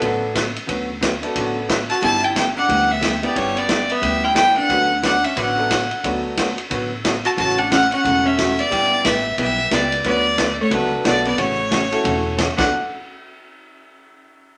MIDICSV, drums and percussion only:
0, 0, Header, 1, 2, 480
1, 0, Start_track
1, 0, Key_signature, 2, "major"
1, 0, Tempo, 334076
1, 976, Time_signature, 4, 2, 24, 8
1, 20943, End_track
2, 0, Start_track
2, 0, Title_t, "Drums"
2, 23, Note_on_c, 9, 36, 23
2, 23, Note_on_c, 9, 51, 68
2, 166, Note_off_c, 9, 51, 0
2, 167, Note_off_c, 9, 36, 0
2, 505, Note_on_c, 9, 36, 27
2, 508, Note_on_c, 9, 38, 69
2, 508, Note_on_c, 9, 44, 61
2, 508, Note_on_c, 9, 51, 70
2, 649, Note_off_c, 9, 36, 0
2, 651, Note_off_c, 9, 38, 0
2, 651, Note_off_c, 9, 44, 0
2, 651, Note_off_c, 9, 51, 0
2, 810, Note_on_c, 9, 51, 47
2, 953, Note_off_c, 9, 51, 0
2, 986, Note_on_c, 9, 51, 63
2, 987, Note_on_c, 9, 36, 19
2, 1130, Note_off_c, 9, 36, 0
2, 1130, Note_off_c, 9, 51, 0
2, 1468, Note_on_c, 9, 36, 27
2, 1471, Note_on_c, 9, 38, 70
2, 1471, Note_on_c, 9, 44, 67
2, 1471, Note_on_c, 9, 51, 76
2, 1612, Note_off_c, 9, 36, 0
2, 1614, Note_off_c, 9, 38, 0
2, 1614, Note_off_c, 9, 44, 0
2, 1614, Note_off_c, 9, 51, 0
2, 1765, Note_on_c, 9, 51, 50
2, 1908, Note_off_c, 9, 51, 0
2, 1947, Note_on_c, 9, 51, 73
2, 1948, Note_on_c, 9, 36, 24
2, 2091, Note_off_c, 9, 51, 0
2, 2092, Note_off_c, 9, 36, 0
2, 2429, Note_on_c, 9, 36, 25
2, 2432, Note_on_c, 9, 38, 77
2, 2432, Note_on_c, 9, 44, 55
2, 2432, Note_on_c, 9, 51, 70
2, 2572, Note_off_c, 9, 36, 0
2, 2576, Note_off_c, 9, 38, 0
2, 2576, Note_off_c, 9, 44, 0
2, 2576, Note_off_c, 9, 51, 0
2, 2724, Note_on_c, 9, 51, 44
2, 2868, Note_off_c, 9, 51, 0
2, 2908, Note_on_c, 9, 51, 60
2, 2909, Note_on_c, 9, 36, 26
2, 3052, Note_off_c, 9, 36, 0
2, 3052, Note_off_c, 9, 51, 0
2, 3387, Note_on_c, 9, 36, 20
2, 3391, Note_on_c, 9, 38, 68
2, 3391, Note_on_c, 9, 44, 68
2, 3391, Note_on_c, 9, 51, 76
2, 3530, Note_off_c, 9, 36, 0
2, 3535, Note_off_c, 9, 38, 0
2, 3535, Note_off_c, 9, 44, 0
2, 3535, Note_off_c, 9, 51, 0
2, 3867, Note_on_c, 9, 36, 29
2, 3871, Note_on_c, 9, 51, 65
2, 4010, Note_off_c, 9, 36, 0
2, 4014, Note_off_c, 9, 51, 0
2, 4344, Note_on_c, 9, 36, 30
2, 4344, Note_on_c, 9, 38, 75
2, 4344, Note_on_c, 9, 44, 54
2, 4344, Note_on_c, 9, 51, 76
2, 4488, Note_off_c, 9, 36, 0
2, 4488, Note_off_c, 9, 38, 0
2, 4488, Note_off_c, 9, 44, 0
2, 4488, Note_off_c, 9, 51, 0
2, 4642, Note_on_c, 9, 51, 44
2, 4785, Note_off_c, 9, 51, 0
2, 4824, Note_on_c, 9, 36, 24
2, 4828, Note_on_c, 9, 51, 64
2, 4968, Note_off_c, 9, 36, 0
2, 4972, Note_off_c, 9, 51, 0
2, 5125, Note_on_c, 9, 51, 43
2, 5268, Note_off_c, 9, 51, 0
2, 5298, Note_on_c, 9, 38, 76
2, 5298, Note_on_c, 9, 44, 55
2, 5298, Note_on_c, 9, 51, 69
2, 5300, Note_on_c, 9, 36, 19
2, 5442, Note_off_c, 9, 38, 0
2, 5442, Note_off_c, 9, 44, 0
2, 5442, Note_off_c, 9, 51, 0
2, 5444, Note_off_c, 9, 36, 0
2, 5596, Note_on_c, 9, 51, 46
2, 5740, Note_off_c, 9, 51, 0
2, 5781, Note_on_c, 9, 36, 28
2, 5785, Note_on_c, 9, 51, 67
2, 5925, Note_off_c, 9, 36, 0
2, 5929, Note_off_c, 9, 51, 0
2, 6261, Note_on_c, 9, 36, 23
2, 6261, Note_on_c, 9, 38, 77
2, 6261, Note_on_c, 9, 44, 55
2, 6261, Note_on_c, 9, 51, 76
2, 6404, Note_off_c, 9, 36, 0
2, 6405, Note_off_c, 9, 38, 0
2, 6405, Note_off_c, 9, 44, 0
2, 6405, Note_off_c, 9, 51, 0
2, 6745, Note_on_c, 9, 36, 28
2, 6748, Note_on_c, 9, 51, 62
2, 6888, Note_off_c, 9, 36, 0
2, 6892, Note_off_c, 9, 51, 0
2, 7228, Note_on_c, 9, 36, 22
2, 7231, Note_on_c, 9, 38, 72
2, 7231, Note_on_c, 9, 44, 54
2, 7231, Note_on_c, 9, 51, 68
2, 7372, Note_off_c, 9, 36, 0
2, 7374, Note_off_c, 9, 38, 0
2, 7374, Note_off_c, 9, 44, 0
2, 7374, Note_off_c, 9, 51, 0
2, 7533, Note_on_c, 9, 51, 50
2, 7676, Note_off_c, 9, 51, 0
2, 7711, Note_on_c, 9, 51, 69
2, 7712, Note_on_c, 9, 36, 25
2, 7854, Note_off_c, 9, 51, 0
2, 7855, Note_off_c, 9, 36, 0
2, 8195, Note_on_c, 9, 36, 24
2, 8198, Note_on_c, 9, 38, 68
2, 8198, Note_on_c, 9, 44, 54
2, 8198, Note_on_c, 9, 51, 78
2, 8339, Note_off_c, 9, 36, 0
2, 8341, Note_off_c, 9, 38, 0
2, 8341, Note_off_c, 9, 44, 0
2, 8341, Note_off_c, 9, 51, 0
2, 8492, Note_on_c, 9, 51, 46
2, 8636, Note_off_c, 9, 51, 0
2, 8677, Note_on_c, 9, 36, 23
2, 8680, Note_on_c, 9, 51, 60
2, 8821, Note_off_c, 9, 36, 0
2, 8824, Note_off_c, 9, 51, 0
2, 9158, Note_on_c, 9, 36, 23
2, 9158, Note_on_c, 9, 38, 65
2, 9158, Note_on_c, 9, 44, 55
2, 9158, Note_on_c, 9, 51, 77
2, 9301, Note_off_c, 9, 38, 0
2, 9301, Note_off_c, 9, 44, 0
2, 9301, Note_off_c, 9, 51, 0
2, 9302, Note_off_c, 9, 36, 0
2, 9452, Note_on_c, 9, 51, 50
2, 9596, Note_off_c, 9, 51, 0
2, 9637, Note_on_c, 9, 51, 70
2, 9640, Note_on_c, 9, 36, 26
2, 9781, Note_off_c, 9, 51, 0
2, 9784, Note_off_c, 9, 36, 0
2, 10121, Note_on_c, 9, 36, 23
2, 10125, Note_on_c, 9, 38, 74
2, 10125, Note_on_c, 9, 44, 55
2, 10125, Note_on_c, 9, 51, 81
2, 10264, Note_off_c, 9, 36, 0
2, 10269, Note_off_c, 9, 38, 0
2, 10269, Note_off_c, 9, 44, 0
2, 10269, Note_off_c, 9, 51, 0
2, 10415, Note_on_c, 9, 51, 50
2, 10559, Note_off_c, 9, 51, 0
2, 10600, Note_on_c, 9, 36, 22
2, 10605, Note_on_c, 9, 51, 56
2, 10744, Note_off_c, 9, 36, 0
2, 10748, Note_off_c, 9, 51, 0
2, 11083, Note_on_c, 9, 36, 19
2, 11087, Note_on_c, 9, 38, 80
2, 11087, Note_on_c, 9, 44, 56
2, 11087, Note_on_c, 9, 51, 72
2, 11226, Note_off_c, 9, 36, 0
2, 11230, Note_off_c, 9, 38, 0
2, 11230, Note_off_c, 9, 44, 0
2, 11230, Note_off_c, 9, 51, 0
2, 11378, Note_on_c, 9, 51, 54
2, 11522, Note_off_c, 9, 51, 0
2, 11563, Note_on_c, 9, 36, 28
2, 11570, Note_on_c, 9, 51, 67
2, 11706, Note_off_c, 9, 36, 0
2, 11714, Note_off_c, 9, 51, 0
2, 12042, Note_on_c, 9, 36, 24
2, 12047, Note_on_c, 9, 38, 72
2, 12047, Note_on_c, 9, 44, 62
2, 12047, Note_on_c, 9, 51, 73
2, 12186, Note_off_c, 9, 36, 0
2, 12191, Note_off_c, 9, 38, 0
2, 12191, Note_off_c, 9, 44, 0
2, 12191, Note_off_c, 9, 51, 0
2, 12338, Note_on_c, 9, 51, 51
2, 12482, Note_off_c, 9, 51, 0
2, 12522, Note_on_c, 9, 36, 26
2, 12528, Note_on_c, 9, 51, 62
2, 12665, Note_off_c, 9, 36, 0
2, 12671, Note_off_c, 9, 51, 0
2, 12998, Note_on_c, 9, 38, 70
2, 12998, Note_on_c, 9, 44, 69
2, 12998, Note_on_c, 9, 51, 70
2, 12999, Note_on_c, 9, 36, 30
2, 13141, Note_off_c, 9, 38, 0
2, 13141, Note_off_c, 9, 44, 0
2, 13141, Note_off_c, 9, 51, 0
2, 13143, Note_off_c, 9, 36, 0
2, 13476, Note_on_c, 9, 51, 67
2, 13479, Note_on_c, 9, 36, 29
2, 13620, Note_off_c, 9, 51, 0
2, 13623, Note_off_c, 9, 36, 0
2, 13954, Note_on_c, 9, 38, 75
2, 13954, Note_on_c, 9, 44, 61
2, 13954, Note_on_c, 9, 51, 69
2, 13957, Note_on_c, 9, 36, 30
2, 14098, Note_off_c, 9, 38, 0
2, 14098, Note_off_c, 9, 44, 0
2, 14098, Note_off_c, 9, 51, 0
2, 14101, Note_off_c, 9, 36, 0
2, 14255, Note_on_c, 9, 51, 51
2, 14399, Note_off_c, 9, 51, 0
2, 14430, Note_on_c, 9, 51, 60
2, 14436, Note_on_c, 9, 36, 20
2, 14574, Note_off_c, 9, 51, 0
2, 14580, Note_off_c, 9, 36, 0
2, 14913, Note_on_c, 9, 38, 68
2, 14913, Note_on_c, 9, 44, 59
2, 14913, Note_on_c, 9, 51, 79
2, 14917, Note_on_c, 9, 36, 25
2, 15057, Note_off_c, 9, 38, 0
2, 15057, Note_off_c, 9, 44, 0
2, 15057, Note_off_c, 9, 51, 0
2, 15060, Note_off_c, 9, 36, 0
2, 15390, Note_on_c, 9, 51, 68
2, 15396, Note_on_c, 9, 36, 26
2, 15534, Note_off_c, 9, 51, 0
2, 15540, Note_off_c, 9, 36, 0
2, 15876, Note_on_c, 9, 36, 21
2, 15876, Note_on_c, 9, 38, 78
2, 15876, Note_on_c, 9, 44, 52
2, 15876, Note_on_c, 9, 51, 68
2, 16019, Note_off_c, 9, 38, 0
2, 16019, Note_off_c, 9, 44, 0
2, 16019, Note_off_c, 9, 51, 0
2, 16020, Note_off_c, 9, 36, 0
2, 16167, Note_on_c, 9, 51, 46
2, 16311, Note_off_c, 9, 51, 0
2, 16350, Note_on_c, 9, 51, 64
2, 16355, Note_on_c, 9, 36, 17
2, 16494, Note_off_c, 9, 51, 0
2, 16498, Note_off_c, 9, 36, 0
2, 16832, Note_on_c, 9, 38, 75
2, 16832, Note_on_c, 9, 44, 51
2, 16832, Note_on_c, 9, 51, 73
2, 16833, Note_on_c, 9, 36, 25
2, 16975, Note_off_c, 9, 38, 0
2, 16975, Note_off_c, 9, 44, 0
2, 16975, Note_off_c, 9, 51, 0
2, 16976, Note_off_c, 9, 36, 0
2, 17131, Note_on_c, 9, 51, 51
2, 17274, Note_off_c, 9, 51, 0
2, 17310, Note_on_c, 9, 36, 20
2, 17312, Note_on_c, 9, 51, 70
2, 17454, Note_off_c, 9, 36, 0
2, 17456, Note_off_c, 9, 51, 0
2, 17787, Note_on_c, 9, 36, 27
2, 17793, Note_on_c, 9, 38, 76
2, 17793, Note_on_c, 9, 44, 60
2, 17793, Note_on_c, 9, 51, 74
2, 17931, Note_off_c, 9, 36, 0
2, 17936, Note_off_c, 9, 38, 0
2, 17936, Note_off_c, 9, 44, 0
2, 17936, Note_off_c, 9, 51, 0
2, 18079, Note_on_c, 9, 38, 81
2, 18079, Note_on_c, 9, 49, 83
2, 18080, Note_on_c, 9, 36, 89
2, 18223, Note_off_c, 9, 36, 0
2, 18223, Note_off_c, 9, 38, 0
2, 18223, Note_off_c, 9, 49, 0
2, 20943, End_track
0, 0, End_of_file